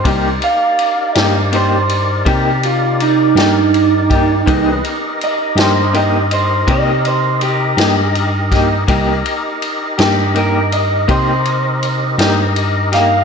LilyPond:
<<
  \new Staff \with { instrumentName = "Clean electric guitar" } { \time 12/8 \key c \minor \tempo 4. = 54 r8 f''4 c''8 c''4 g'8 f'8 ees'8 ees'4.~ | ees'8 r8 ees''8 c''8 ees''8 c''8 ees''8 c''8 g'2~ | g'4 r8 g'8 bes'8 ees''8 c''2 r8 f''8 | }
  \new Staff \with { instrumentName = "Tonewheel organ" } { \time 12/8 \key c \minor <ees' g' bes' d''>1. | <e aes' b' ees''>8 <ees' g' bes' ees''>1~ <ees' g' bes' ees''>4. | <ees' g' bes' ees''>1. | }
  \new Staff \with { instrumentName = "Clean electric guitar" } { \time 12/8 \key c \minor <c bes ees' g'>8 r4 <bes ees' g'>8 <c bes ees' g'>8 r8 <c bes ees' g'>8 r4 <bes ees' g'>8 r8 <bes ees' g'>8 | <c bes ees' g'>8 r4 <bes ees' g'>8 <c bes ees' g'>8 r8 <c bes ees' g'>8 r4 <bes ees' g'>8 r8 <bes ees' g'>8 | <c bes ees' g'>8 r4 <bes ees' g'>8 <c bes ees' g'>8 r8 <c bes ees' g'>8 r4 <bes ees' g'>8 r8 <bes ees' g'>8 | }
  \new Staff \with { instrumentName = "Tine electric piano" } { \clef bass \time 12/8 \key c \minor c,8 r4 g,4. c4. g,4. | c,8 r4 g,4. c4. g,4. | c,8 r4 g,4. c4. g,4. | }
  \new DrumStaff \with { instrumentName = "Drums" } \drummode { \time 12/8 <bd cymr>8 cymr8 cymr8 <cymr sn>8 cymr8 cymr8 <bd cymr>8 cymr8 cymr8 <cymr sn>8 cymr8 <bd cymr>8 | <bd cymr>8 cymr8 cymr8 <cymr sn>8 cymr8 cymr8 <bd cymr>8 cymr8 cymr8 <cymr sn>8 cymr8 <bd cymr sn>8 | <bd cymr>8 cymr8 cymr8 <cymr sn>8 cymr8 cymr8 <bd cymr>8 cymr8 cymr8 <cymr sn>8 cymr8 <cymr sn>8 | }
>>